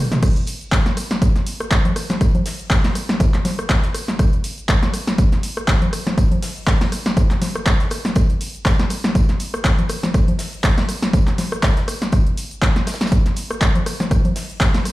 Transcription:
0.12 snare, closed hi-hat, mid tom, shaker
0.23 kick, cross-stick, closed hi-hat, tambourine, crash, shaker
0.36 closed hi-hat
0.47 open hi-hat, tambourine, shaker
0.61 closed hi-hat, shaker
0.72 kick, snare, clap, closed hi-hat, tambourine, shaker
0.86 snare, closed hi-hat
0.97 cross-stick, open hi-hat, tambourine, shaker
1.11 snare, closed hi-hat, shaker
1.22 kick, closed hi-hat, tambourine, shaker
1.36 snare, closed hi-hat
1.47 open hi-hat, tambourine, shaker
1.60 cross-stick, closed hi-hat, shaker
1.71 kick, snare, clap, closed hi-hat, tambourine, shaker
1.85 closed hi-hat, low conga
1.96 cross-stick, open hi-hat, tambourine, shaker
2.10 snare, closed hi-hat, low conga, shaker
2.21 kick, cross-stick, closed hi-hat, tambourine, shaker
2.35 closed hi-hat, low conga
2.46 snare, open hi-hat, shaker
2.60 closed hi-hat, shaker
2.70 kick, snare, clap, closed hi-hat, tambourine, shaker
2.84 snare, closed hi-hat
2.95 cross-stick, open hi-hat, tambourine, shaker
3.09 snare, shaker
3.20 kick, closed hi-hat, tambourine, low conga, shaker
3.34 snare, clap, closed hi-hat
3.45 snare, open hi-hat, tambourine, low conga, shaker
3.59 cross-stick, closed hi-hat, shaker
3.69 kick, snare, clap, closed hi-hat, tambourine, shaker
3.83 snare, closed hi-hat
3.94 cross-stick, open hi-hat, tambourine, shaker
4.08 snare, shaker
4.19 kick, cross-stick, closed hi-hat, tambourine, shaker
4.33 closed hi-hat
4.44 open hi-hat, tambourine, shaker
4.58 closed hi-hat, shaker
4.69 kick, snare, clap, closed hi-hat, tambourine, shaker
4.83 snare, closed hi-hat
4.93 cross-stick, open hi-hat, tambourine, shaker
5.07 snare, closed hi-hat, shaker
5.18 kick, closed hi-hat, tambourine, shaker
5.32 snare, closed hi-hat
5.43 open hi-hat, tambourine, shaker
5.57 cross-stick, closed hi-hat, shaker
5.68 kick, snare, clap, closed hi-hat, tambourine, shaker
5.82 closed hi-hat, low conga
5.93 cross-stick, open hi-hat, tambourine, shaker
6.07 snare, closed hi-hat, low conga, shaker
6.18 kick, cross-stick, closed hi-hat, tambourine, shaker
6.32 closed hi-hat, low conga
6.42 snare, open hi-hat, shaker
6.56 closed hi-hat, shaker
6.67 kick, snare, clap, closed hi-hat, tambourine, shaker
6.81 snare, closed hi-hat
6.92 cross-stick, open hi-hat, tambourine, shaker
7.06 snare, shaker
7.17 kick, closed hi-hat, tambourine, low conga, shaker
7.31 snare, clap, closed hi-hat
7.42 snare, open hi-hat, tambourine, low conga, shaker
7.55 cross-stick, shaker
7.66 kick, snare, clap, closed hi-hat, tambourine, shaker
7.80 snare, closed hi-hat
7.91 cross-stick, open hi-hat, tambourine, shaker
8.05 snare, closed hi-hat, shaker
8.15 kick, cross-stick, closed hi-hat, tambourine, shaker
8.30 closed hi-hat
8.41 open hi-hat, tambourine, shaker
8.55 closed hi-hat, shaker
8.65 kick, snare, clap, closed hi-hat, tambourine, shaker
8.79 snare, closed hi-hat
8.90 cross-stick, open hi-hat, tambourine, shaker
9.04 snare, closed hi-hat, shaker
9.15 kick, closed hi-hat, tambourine, shaker
9.29 snare, closed hi-hat
9.40 open hi-hat, tambourine, shaker
9.54 cross-stick, closed hi-hat, shaker
9.64 kick, snare, clap, closed hi-hat, tambourine, shaker
9.79 closed hi-hat, low conga
9.89 cross-stick, open hi-hat, tambourine, shaker
10.03 snare, low conga, shaker
10.14 kick, cross-stick, closed hi-hat, tambourine, shaker
10.28 closed hi-hat, low conga
10.39 snare, open hi-hat, shaker
10.53 closed hi-hat, shaker
10.64 kick, snare, clap, closed hi-hat, tambourine, shaker
10.78 snare, closed hi-hat
10.89 cross-stick, open hi-hat, tambourine, shaker
11.03 snare, closed hi-hat, shaker
11.13 kick, closed hi-hat, tambourine, low conga, shaker
11.27 snare, clap, closed hi-hat
11.38 snare, open hi-hat, tambourine, low conga, shaker
11.52 cross-stick, shaker
11.63 kick, snare, clap, closed hi-hat, tambourine, shaker
11.77 snare, closed hi-hat
11.88 cross-stick, open hi-hat, tambourine, shaker
12.02 snare, closed hi-hat, shaker
12.12 kick, cross-stick, closed hi-hat, tambourine, shaker
12.27 closed hi-hat
12.37 open hi-hat, tambourine, shaker
12.51 closed hi-hat, shaker
12.62 kick, snare, clap, closed hi-hat, tambourine, shaker
12.76 snare, closed hi-hat
12.87 cross-stick, snare, open hi-hat, tambourine, shaker
12.94 snare, tambourine
13.01 snare, tambourine, shaker
13.06 snare, tambourine
13.12 kick, closed hi-hat, tambourine, shaker
13.26 snare, closed hi-hat
13.36 open hi-hat, tambourine, shaker
13.51 cross-stick, closed hi-hat, shaker
13.61 kick, snare, clap, closed hi-hat, tambourine, shaker
13.75 closed hi-hat, low conga
13.86 cross-stick, open hi-hat, tambourine, shaker
14.00 snare, closed hi-hat, low conga, shaker
14.11 kick, cross-stick, closed hi-hat, tambourine, shaker
14.25 closed hi-hat, low conga
14.36 snare, open hi-hat, shaker
14.50 closed hi-hat, shaker
14.61 kick, snare, clap, closed hi-hat, tambourine, shaker
14.74 snare, closed hi-hat
14.85 cross-stick, open hi-hat, tambourine, shaker

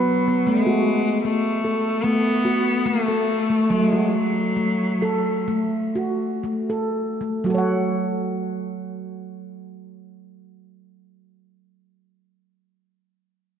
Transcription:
Already playing: F#3 B4
0.28 B3
0.47 G#3 A3
0.66 F#4
1.24 A3
1.64 A4
2.04 A3 B3
2.45 F#4
2.86 A3 A#3
3.03 A3
3.08 A4
3.50 A3
3.70 F#3 A3
3.82 G#3
3.93 F#4
4.15 F#3
4.56 A3
5.02 A4
5.48 A3
5.95 F#4
6.43 A3
6.70 A4
7.21 A3
7.44 F#3 F#4
7.50 A4
7.54 C#5 F#5

